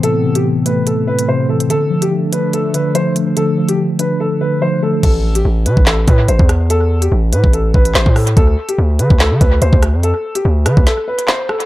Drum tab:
CC |----------------|----------------|----------------|x---------------|
HH |x--x--x-x--x---x|x--x--x-x-x-x-x-|x--x--x---------|x--x--x-x-x-x-x-|
CP |----------------|----------------|----------------|--------x-------|
SD |----------------|----------------|----------------|--------o-----r-|
BD |----------------|----------------|----------------|o------o--o--o--|

CC |----------------|----------------|----------------|
HH |x--x--x-x--x--ox|x--x--x-x-x-x-x-|x--x--x-x--x---x|
CP |------------x---|--------x-------|------------x---|
SD |------------o-r-|--------o-----r-|------r-o---o-r-|
BD |-------o--o--o--|o------o--o--o--|-------o--------|